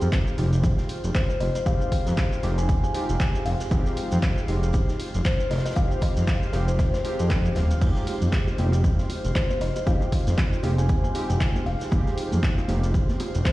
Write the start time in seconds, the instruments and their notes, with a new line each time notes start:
Already playing: synth keys G#3 C4 D#4 F4 G4, analog synth pad F4 C5 G5
0.01 analog synth bass F2, closed hi-hat, shaker
0.12 kick, snare, clap, closed hi-hat, shaker
0.27 shaker
0.37 analog synth bass F1, synth keys G#3 C4 D#4 F4 G4, closed hi-hat, open hi-hat
0.53 closed hi-hat, shaker
0.64 analog synth bass D#1, kick, closed hi-hat, shaker
0.78 snare, shaker
0.89 closed hi-hat, open hi-hat
1.04 analog synth bass F1, closed hi-hat, shaker
1.15 kalimba C5, kick, snare, clap, closed hi-hat, shaker
1.29 kalimba C5, closed hi-hat, shaker
1.40 analog synth bass F1, kalimba D#5, closed hi-hat, open hi-hat
1.55 kalimba D#5, closed hi-hat, shaker
1.66 analog synth bass F1, synth keys G#3 C4 D#4 F4 G4, kalimba F5, kick, closed hi-hat, shaker
1.81 shaker
1.92 kick, closed hi-hat, open hi-hat
2.06 analog synth bass F2, snare, closed hi-hat, shaker
2.17 kick, snare, clap, closed hi-hat, shaker
2.32 closed hi-hat, shaker
2.43 analog synth bass F1, synth keys G#3 C4 D#4 F4 G4, snare, closed hi-hat, open hi-hat
2.58 kalimba G#5, closed hi-hat, shaker
2.69 analog synth bass D#1, kick, closed hi-hat, shaker
2.83 kalimba G#5, shaker
2.94 synth keys G#3 C4 D#4 F4 G4, closed hi-hat, open hi-hat
3.09 analog synth bass F1, closed hi-hat, shaker
3.20 kick, snare, clap, closed hi-hat, shaker
3.35 shaker
3.46 analog synth bass F1, kalimba F5, open hi-hat
3.60 snare, closed hi-hat, shaker
3.71 analog synth bass F1, synth keys G#3 C4 D#4 F4 G4, kick, closed hi-hat, shaker
3.86 snare, shaker
3.97 closed hi-hat, open hi-hat
4.11 analog synth bass F2, closed hi-hat, shaker
4.23 kick, snare, clap, closed hi-hat, shaker
4.38 shaker
4.48 analog synth bass F1, synth keys G#3 C4 D#4 F4 G4, closed hi-hat, open hi-hat
4.63 closed hi-hat, shaker
4.73 analog synth bass D#1, kick, closed hi-hat, shaker
4.88 snare, shaker
5.00 closed hi-hat, open hi-hat
5.14 analog synth bass F1, closed hi-hat, shaker
5.24 kalimba C5, kick, snare, clap, closed hi-hat, shaker
5.40 kalimba C5, closed hi-hat, shaker
5.51 analog synth bass F1, kalimba D#5, analog synth pad F5, snare, closed hi-hat, open hi-hat
5.57 snare, closed hi-hat
5.65 kalimba D#5, snare, closed hi-hat, shaker
5.71 snare, closed hi-hat
5.76 analog synth bass F1, synth keys G#3 C4 D#4 F4 G4, kalimba F5, kick, closed hi-hat, shaker
5.91 shaker
6.01 kalimba D#5, kick, closed hi-hat, open hi-hat
6.17 analog synth bass F2, snare, closed hi-hat, shaker
6.27 kick, snare, clap, closed hi-hat, shaker
6.42 closed hi-hat, shaker
6.53 analog synth bass F1, synth keys G#3 C4 D#4 F4 G4, snare, closed hi-hat, open hi-hat
6.68 kalimba C5, closed hi-hat, shaker
6.79 analog synth bass D#1, kick, snare, closed hi-hat, shaker
6.94 kalimba C5, snare, closed hi-hat, shaker
7.04 synth keys G#3 C4 D#4 F4 G4, open hi-hat
7.19 analog synth bass F2, closed hi-hat, shaker
7.30 kick, snare, clap, closed hi-hat, shaker
7.45 shaker
7.55 analog synth bass D#1, snare, closed hi-hat, open hi-hat
7.71 closed hi-hat, shaker
7.81 analog synth bass F1, synth keys G#3 C4 D#4 F4 G4, kick, closed hi-hat, crash, high bongo, high conga, shaker
7.96 snare, shaker
8.07 closed hi-hat, open hi-hat, high bongo
8.21 analog synth bass F2, closed hi-hat, high conga, low conga, shaker
8.32 kick, snare, clap, closed hi-hat, shaker
8.48 high bongo, shaker
8.58 analog synth bass F1, synth keys G#3 C4 D#4 F4 G4, snare, closed hi-hat, open hi-hat, high conga
8.72 closed hi-hat, high bongo, shaker
8.84 analog synth bass D#1, kick, closed hi-hat, shaker
8.99 snare, high conga, shaker
9.10 closed hi-hat, open hi-hat, high bongo
9.24 analog synth bass F1, closed hi-hat, shaker
9.35 kalimba C5, kick, snare, clap, closed hi-hat, high bongo, shaker
9.50 kalimba C5, closed hi-hat, high conga, shaker
9.61 analog synth bass F1, kalimba D#5, closed hi-hat, open hi-hat
9.76 kalimba D#5, closed hi-hat, high bongo, shaker
9.86 analog synth bass F1, synth keys G#3 C4 D#4 F4 G4, kalimba F5, kick, closed hi-hat, high conga, shaker
10.01 high bongo, shaker
10.12 kick, closed hi-hat, open hi-hat
10.27 analog synth bass F2, snare, closed hi-hat, high conga, low conga, shaker
10.37 kick, snare, clap, closed hi-hat, high bongo, shaker
10.53 closed hi-hat, shaker
10.63 analog synth bass F1, synth keys G#3 C4 D#4 F4 G4, closed hi-hat, open hi-hat, high bongo, high conga
10.78 kalimba G#5, closed hi-hat, shaker
10.89 analog synth bass D#1, kick, closed hi-hat, shaker
11.04 kalimba G#5, high bongo, high conga, shaker
11.14 synth keys G#3 C4 D#4 F4 G4, closed hi-hat, open hi-hat
11.29 analog synth bass F1, closed hi-hat, high bongo, shaker
11.40 kick, snare, clap, closed hi-hat, shaker
11.55 high conga, shaker
11.66 analog synth bass F1, kalimba F5, open hi-hat, high bongo
11.81 snare, closed hi-hat, shaker
11.91 analog synth bass F1, synth keys G#3 C4 D#4 F4 G4, kick, closed hi-hat, high bongo, high conga, shaker
12.07 snare, shaker
12.17 closed hi-hat, open hi-hat
12.31 analog synth bass F2, closed hi-hat, high bongo, high conga, low conga, shaker
12.43 kick, snare, clap, closed hi-hat, shaker
12.58 high bongo, shaker
12.68 analog synth bass F1, synth keys G#3 C4 D#4 F4 G4, snare, closed hi-hat, open hi-hat, high conga
12.84 closed hi-hat, shaker
12.94 analog synth bass D#1, kick, closed hi-hat, high bongo, shaker
13.09 snare, high conga, shaker
13.20 closed hi-hat, open hi-hat, high bongo
13.35 analog synth bass F1, closed hi-hat, shaker
13.45 kalimba C5, kick, snare, clap, closed hi-hat, shaker